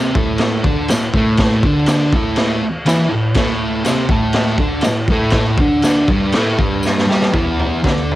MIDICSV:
0, 0, Header, 1, 4, 480
1, 0, Start_track
1, 0, Tempo, 496278
1, 1339, Time_signature, 4, 2, 24, 8
1, 7887, End_track
2, 0, Start_track
2, 0, Title_t, "Distorted electric guitar"
2, 0, Program_c, 0, 30
2, 0, Note_on_c, 0, 48, 90
2, 0, Note_on_c, 0, 60, 92
2, 136, Note_off_c, 0, 48, 0
2, 140, Note_on_c, 0, 45, 92
2, 146, Note_off_c, 0, 60, 0
2, 152, Note_on_c, 0, 57, 98
2, 612, Note_off_c, 0, 45, 0
2, 617, Note_on_c, 0, 50, 95
2, 618, Note_off_c, 0, 57, 0
2, 630, Note_on_c, 0, 62, 93
2, 851, Note_off_c, 0, 50, 0
2, 857, Note_off_c, 0, 62, 0
2, 860, Note_on_c, 0, 45, 77
2, 1051, Note_off_c, 0, 45, 0
2, 1107, Note_on_c, 0, 45, 91
2, 1126, Note_on_c, 0, 57, 107
2, 1574, Note_off_c, 0, 45, 0
2, 1584, Note_off_c, 0, 57, 0
2, 1596, Note_on_c, 0, 50, 90
2, 1605, Note_on_c, 0, 62, 102
2, 2059, Note_off_c, 0, 50, 0
2, 2063, Note_off_c, 0, 62, 0
2, 2066, Note_on_c, 0, 45, 88
2, 2086, Note_on_c, 0, 57, 113
2, 2533, Note_off_c, 0, 45, 0
2, 2543, Note_off_c, 0, 57, 0
2, 2761, Note_on_c, 0, 52, 94
2, 2774, Note_on_c, 0, 64, 96
2, 2991, Note_off_c, 0, 52, 0
2, 2995, Note_on_c, 0, 45, 70
2, 3007, Note_off_c, 0, 64, 0
2, 3196, Note_off_c, 0, 45, 0
2, 3244, Note_on_c, 0, 45, 105
2, 3254, Note_on_c, 0, 57, 107
2, 3711, Note_off_c, 0, 45, 0
2, 3715, Note_on_c, 0, 48, 94
2, 3724, Note_off_c, 0, 57, 0
2, 3728, Note_on_c, 0, 60, 116
2, 3957, Note_off_c, 0, 48, 0
2, 3962, Note_on_c, 0, 45, 85
2, 3963, Note_off_c, 0, 60, 0
2, 3979, Note_on_c, 0, 57, 113
2, 4437, Note_off_c, 0, 45, 0
2, 4441, Note_on_c, 0, 50, 98
2, 4448, Note_off_c, 0, 57, 0
2, 4451, Note_on_c, 0, 62, 120
2, 4680, Note_off_c, 0, 50, 0
2, 4684, Note_on_c, 0, 45, 73
2, 4685, Note_off_c, 0, 62, 0
2, 4880, Note_off_c, 0, 45, 0
2, 4934, Note_on_c, 0, 45, 88
2, 4944, Note_on_c, 0, 57, 92
2, 5406, Note_off_c, 0, 45, 0
2, 5411, Note_off_c, 0, 57, 0
2, 5420, Note_on_c, 0, 50, 96
2, 5429, Note_on_c, 0, 62, 103
2, 5890, Note_off_c, 0, 50, 0
2, 5890, Note_on_c, 0, 43, 86
2, 5894, Note_off_c, 0, 62, 0
2, 5906, Note_on_c, 0, 55, 96
2, 6125, Note_off_c, 0, 43, 0
2, 6131, Note_on_c, 0, 45, 84
2, 6133, Note_off_c, 0, 55, 0
2, 6146, Note_on_c, 0, 57, 91
2, 6362, Note_on_c, 0, 43, 93
2, 6366, Note_off_c, 0, 45, 0
2, 6373, Note_off_c, 0, 57, 0
2, 6375, Note_on_c, 0, 55, 102
2, 6831, Note_off_c, 0, 55, 0
2, 6842, Note_on_c, 0, 55, 97
2, 6843, Note_off_c, 0, 43, 0
2, 6854, Note_on_c, 0, 67, 92
2, 7081, Note_on_c, 0, 40, 100
2, 7083, Note_off_c, 0, 55, 0
2, 7089, Note_off_c, 0, 67, 0
2, 7095, Note_on_c, 0, 52, 88
2, 7565, Note_off_c, 0, 40, 0
2, 7568, Note_on_c, 0, 50, 74
2, 7572, Note_off_c, 0, 52, 0
2, 7582, Note_on_c, 0, 62, 101
2, 7887, Note_off_c, 0, 50, 0
2, 7887, Note_off_c, 0, 62, 0
2, 7887, End_track
3, 0, Start_track
3, 0, Title_t, "Muted distorted electric guitar strokes"
3, 2545, Note_on_c, 9, 29, 65
3, 2642, Note_off_c, 9, 29, 0
3, 7887, End_track
4, 0, Start_track
4, 0, Title_t, "Drums"
4, 147, Note_on_c, 9, 36, 114
4, 244, Note_off_c, 9, 36, 0
4, 368, Note_on_c, 9, 49, 62
4, 381, Note_on_c, 9, 38, 117
4, 464, Note_off_c, 9, 49, 0
4, 478, Note_off_c, 9, 38, 0
4, 621, Note_on_c, 9, 36, 109
4, 718, Note_off_c, 9, 36, 0
4, 855, Note_on_c, 9, 49, 63
4, 868, Note_on_c, 9, 38, 111
4, 874, Note_on_c, 9, 54, 89
4, 951, Note_off_c, 9, 49, 0
4, 965, Note_off_c, 9, 38, 0
4, 971, Note_off_c, 9, 54, 0
4, 1099, Note_on_c, 9, 36, 89
4, 1196, Note_off_c, 9, 36, 0
4, 1328, Note_on_c, 9, 49, 60
4, 1338, Note_on_c, 9, 36, 105
4, 1341, Note_on_c, 9, 38, 113
4, 1424, Note_off_c, 9, 49, 0
4, 1435, Note_off_c, 9, 36, 0
4, 1438, Note_off_c, 9, 38, 0
4, 1577, Note_on_c, 9, 36, 96
4, 1673, Note_off_c, 9, 36, 0
4, 1801, Note_on_c, 9, 49, 66
4, 1814, Note_on_c, 9, 38, 115
4, 1822, Note_on_c, 9, 54, 90
4, 1897, Note_off_c, 9, 49, 0
4, 1911, Note_off_c, 9, 38, 0
4, 1919, Note_off_c, 9, 54, 0
4, 2056, Note_on_c, 9, 36, 106
4, 2152, Note_off_c, 9, 36, 0
4, 2282, Note_on_c, 9, 49, 56
4, 2295, Note_on_c, 9, 38, 112
4, 2378, Note_off_c, 9, 49, 0
4, 2392, Note_off_c, 9, 38, 0
4, 2764, Note_on_c, 9, 49, 64
4, 2777, Note_on_c, 9, 38, 114
4, 2794, Note_on_c, 9, 54, 84
4, 2860, Note_off_c, 9, 49, 0
4, 2874, Note_off_c, 9, 38, 0
4, 2891, Note_off_c, 9, 54, 0
4, 3235, Note_on_c, 9, 49, 59
4, 3243, Note_on_c, 9, 36, 107
4, 3248, Note_on_c, 9, 38, 114
4, 3331, Note_off_c, 9, 49, 0
4, 3340, Note_off_c, 9, 36, 0
4, 3345, Note_off_c, 9, 38, 0
4, 3719, Note_on_c, 9, 49, 63
4, 3732, Note_on_c, 9, 54, 91
4, 3733, Note_on_c, 9, 38, 116
4, 3816, Note_off_c, 9, 49, 0
4, 3829, Note_off_c, 9, 54, 0
4, 3830, Note_off_c, 9, 38, 0
4, 3955, Note_on_c, 9, 36, 115
4, 4051, Note_off_c, 9, 36, 0
4, 4185, Note_on_c, 9, 49, 59
4, 4199, Note_on_c, 9, 38, 110
4, 4282, Note_off_c, 9, 49, 0
4, 4296, Note_off_c, 9, 38, 0
4, 4429, Note_on_c, 9, 36, 97
4, 4526, Note_off_c, 9, 36, 0
4, 4652, Note_on_c, 9, 49, 59
4, 4665, Note_on_c, 9, 38, 111
4, 4685, Note_on_c, 9, 54, 78
4, 4749, Note_off_c, 9, 49, 0
4, 4762, Note_off_c, 9, 38, 0
4, 4782, Note_off_c, 9, 54, 0
4, 4911, Note_on_c, 9, 36, 99
4, 5007, Note_off_c, 9, 36, 0
4, 5128, Note_on_c, 9, 49, 60
4, 5141, Note_on_c, 9, 38, 109
4, 5148, Note_on_c, 9, 36, 104
4, 5225, Note_off_c, 9, 49, 0
4, 5238, Note_off_c, 9, 38, 0
4, 5244, Note_off_c, 9, 36, 0
4, 5392, Note_on_c, 9, 36, 114
4, 5489, Note_off_c, 9, 36, 0
4, 5630, Note_on_c, 9, 49, 65
4, 5644, Note_on_c, 9, 38, 100
4, 5650, Note_on_c, 9, 54, 92
4, 5727, Note_off_c, 9, 49, 0
4, 5741, Note_off_c, 9, 38, 0
4, 5747, Note_off_c, 9, 54, 0
4, 5880, Note_on_c, 9, 36, 104
4, 5977, Note_off_c, 9, 36, 0
4, 6115, Note_on_c, 9, 49, 68
4, 6129, Note_on_c, 9, 38, 110
4, 6212, Note_off_c, 9, 49, 0
4, 6225, Note_off_c, 9, 38, 0
4, 6369, Note_on_c, 9, 36, 94
4, 6466, Note_off_c, 9, 36, 0
4, 6604, Note_on_c, 9, 54, 84
4, 6631, Note_on_c, 9, 38, 65
4, 6701, Note_off_c, 9, 54, 0
4, 6728, Note_off_c, 9, 38, 0
4, 6752, Note_on_c, 9, 38, 67
4, 6849, Note_off_c, 9, 38, 0
4, 6875, Note_on_c, 9, 38, 74
4, 6972, Note_off_c, 9, 38, 0
4, 6985, Note_on_c, 9, 38, 96
4, 7081, Note_off_c, 9, 38, 0
4, 7093, Note_on_c, 9, 43, 81
4, 7095, Note_on_c, 9, 36, 104
4, 7190, Note_off_c, 9, 43, 0
4, 7192, Note_off_c, 9, 36, 0
4, 7347, Note_on_c, 9, 43, 58
4, 7444, Note_off_c, 9, 43, 0
4, 7584, Note_on_c, 9, 36, 110
4, 7596, Note_on_c, 9, 43, 75
4, 7609, Note_on_c, 9, 38, 103
4, 7680, Note_off_c, 9, 36, 0
4, 7693, Note_off_c, 9, 43, 0
4, 7706, Note_off_c, 9, 38, 0
4, 7849, Note_on_c, 9, 43, 60
4, 7887, Note_off_c, 9, 43, 0
4, 7887, End_track
0, 0, End_of_file